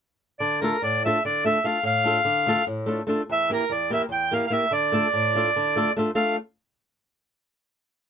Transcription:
0.39 D3 D5
0.61 A3 D4 F4 A4 A#4
0.82 A2 D5
1.05 A3 D4 F4 A4 E5
1.25 D3 D5
1.45 A3 D4 F4 A4 E5
1.64 A3 D4 F4 A4 F5
1.83 A2 F5
2.04 A3 D4 F4 A4
2.25 D3
2.46 A3 D4 F4 A4
2.67 A2
2.86 A3 D4 F4 A4
3.07 A3 D4 F4 A4
3.30 E2 E5
3.50 A#3 E4 G4 A#4
3.70 E2 D5
3.90 A#3 E4 G4 A#4 E5
4.09 E2 G5
4.31 A#3 E4 G4 A#4 F5
4.47 A#3 F5
4.51 E4 G4 A#4 E5
4.71 D3 D5
4.92 A3 D4 F4 A4
5.14 A2
5.35 A3 D4 F4 A4
5.56 D3
5.76 A3 D4 F4 A4
5.97 A3 D4 F4 A4
6.15 A3 D4 F4 A4 F5

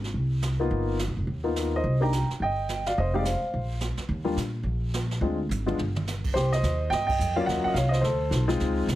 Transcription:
Already playing: G#1
0.04 snare
0.14 C2, brush sweep
0.42 snare, hi-hat pedal
0.60 A#3 B3 D#4 F4
0.70 G1, brush sweep
0.99 snare, hi-hat pedal
1.08 A#1
1.17 F1
1.27 D#2, brush sweep
1.44 A#3 B3 D#4 F4
1.56 snare, hi-hat pedal
1.76 C5 D#5
1.84 C2, brush sweep
2.00 A#3 D4 D#4 G4 G5 A#5
2.13 snare, hi-hat pedal
2.29 muted upright bass stroke, snare
2.40 G1 D#5 G5, brush sweep
2.69 snare, hi-hat pedal
2.86 D5 F5, snare
2.97 F1 C5 D#5, brush sweep
3.14 G#3 C4 D#4 G4 F5
3.18 D5
3.25 C5 F5, snare, hi-hat pedal
3.42 muted upright bass stroke
3.53 A#1, brush sweep
3.81 snare, hi-hat pedal
3.97 muted upright bass stroke, snare
4.08 D#2, brush sweep
4.24 G3 A#3 D4 F4
4.36 A#2, snare, hi-hat pedal
4.63 A#1, brush sweep
4.94 snare, hi-hat pedal
5.11 snare
5.21 D2 G#3 C4 D4 F4, brush sweep
5.49 G#1, hi-hat pedal, high tom
5.66 G#3 B3 D4 F4, mid tom
5.78 G1, mid tom
5.96 mid tom
6.07 snare, hi-hat pedal
6.24 kick, crash
6.34 C2 G4 C5, brush sweep, snare
6.52 C5 D#5, snare
6.63 D#2, snare, hi-hat pedal
6.90 G2 D#5 G5, brush sweep, snare
7.07 D#5 G5, kick, ride
7.19 F2, hi-hat pedal
7.36 F#3 A#3 C#4 F4 D5 F5
7.46 D#2 F#5, brush sweep, snare
7.51 D#5
7.64 D#5 F#5, muted upright bass stroke
7.74 C2 C#5 F5, snare, hi-hat pedal
7.89 C5 D#5
7.93 snare
8.01 D2 A4 C5, brush sweep, snare
8.31 B1, snare, hi-hat pedal
8.48 G#3 C4 D#4 F4, snare
8.60 C#2, brush sweep, snare
8.87 C2, snare, hi-hat pedal

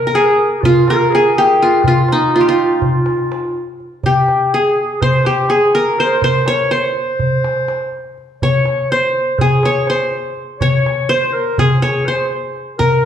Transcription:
Already playing: A#4
0.07 A#4
0.14 G#4
0.19 A#4
0.27 G#4, darbuka ka
0.38 darbuka ka
0.61 F4, darbuka dum
0.65 F4
0.86 A#4, darbuka tek
0.90 A#4
1.00 darbuka ka
1.10 G#4, darbuka tek
1.15 G#4
1.38 G4
1.61 F4, darbuka ka
1.83 F4, darbuka dum
1.88 F4
2.08 D#4, darbuka tek
2.33 F4
2.41 G4
2.46 F4
2.53 D#4
2.59 F4
2.82 darbuka dum
3.06 darbuka tek
3.19 darbuka ka
3.32 darbuka tek
3.80 darbuka ka
4.03 G4, darbuka dum
4.28 darbuka tek
4.53 G#4
4.65 darbuka ka
4.77 darbuka ka
5.01 C5, darbuka dum
5.25 G4, darbuka tek
5.38 darbuka ka
5.49 G#4, darbuka tek
5.75 A#4
5.98 C5, darbuka ka
6.22 C5, darbuka dum
6.46 C#5, darbuka tek
6.71 C5, darbuka ka
6.79 C#5
6.84 C5, darbuka ka
6.96 darbuka ka
7.20 darbuka dum
7.44 darbuka tek
7.56 darbuka ka
7.68 darbuka tek
8.18 darbuka ka
8.41 C#5, darbuka dum
8.66 darbuka tek
8.90 C5
9.02 darbuka ka
9.38 G#4, darbuka dum
9.63 C#5, darbuka tek
9.75 darbuka ka
9.87 C5, darbuka tek
10.37 darbuka ka
10.60 C#5, darbuka dum
10.86 darbuka tek
11.09 C5
11.22 darbuka ka
11.33 A#4, darbuka ka
11.58 G#4, darbuka dum
11.82 C#5, darbuka tek
11.95 darbuka ka
12.05 C5, darbuka tek
12.56 darbuka ka
12.78 A#4, darbuka dum

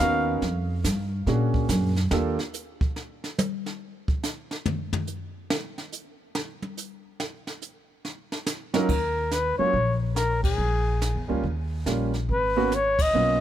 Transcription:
Already playing: F5
0.00 D#2 B3 C#4 D#4 F#4 A#4, kick
0.42 F2, brush sweep, kick, snare
0.84 G2, kick, snare, hi-hat pedal
1.26 A#2 A#3 C#4 D4 F#4 G#4, brush sweep, kick, snare
1.54 kick
1.69 F#2, kick, snare, hi-hat pedal
1.96 snare
2.11 D#2 A#3 D4 F4 G4 A4, snare
2.39 snare
2.54 hi-hat pedal
2.81 kick
2.96 snare
3.24 snare
3.38 hi-hat pedal, high tom
3.66 snare
4.08 kick
4.23 snare, hi-hat pedal
4.51 snare
4.66 floor tom
4.93 floor tom
5.07 hi-hat pedal
5.50 snare
5.78 snare
5.92 hi-hat pedal
6.35 snare
6.62 high tom
6.77 hi-hat pedal
7.20 snare
7.47 snare
7.62 hi-hat pedal
8.05 snare
8.32 snare
8.46 snare, hi-hat pedal
8.74 F#3 C#4 D#4 F4 A#4, snare
8.89 D#2 A#4, brush sweep, kick, crash
9.31 B4, snare, hi-hat pedal
9.58 F#3 A#3 C#4 F4 C#5, muted upright bass stroke
9.73 A#1, brush sweep, kick
10.16 A#4, snare, hi-hat pedal
10.44 G#4, kick, ride
10.58 A#1, brush sweep
11.02 snare, hi-hat pedal
11.15 E2
11.28 C#2 G3 A#3 C#4 F4
11.44 D#2, brush sweep, kick
11.85 A#1 G3 A#3 C#4 F4, snare, hi-hat pedal
12.14 snare
12.29 G#1 B4, brush sweep, kick
12.56 A#3 B3 C#4 F#4
12.72 C#5, snare, hi-hat pedal
12.99 D#5, kick, ride
13.13 B1 A#3 B3 C#4 F4, brush sweep

